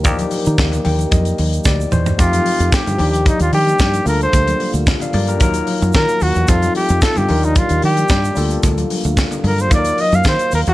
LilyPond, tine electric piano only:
\new Staff \with { instrumentName = "Tine electric piano" } { \time 4/4 \key ees \lydian \tempo 4 = 112 << { r4. g''8 ees''4 d''8 c''8 | r1 | r4 r16 <d'' f''>16 <bes' d''>16 <g' bes'>8 r4. r16 | r1 |
r1 | } \\ { <f bes ees' g' d''>1 | <f a c' ees' g'>4. <f bes d' ees' g'>2 <g bes d' f' a'>8~ | <g bes d' f' a'>2 <ges bes ees' f' bes'>2 | <g c' ees' f' a'>4. <f g d' ees' f' bes'>2 <g bes d' f' a'>8~ |
<g bes d' f' a'>2 <ges bes ees' f' a' bes'>2 | } >> }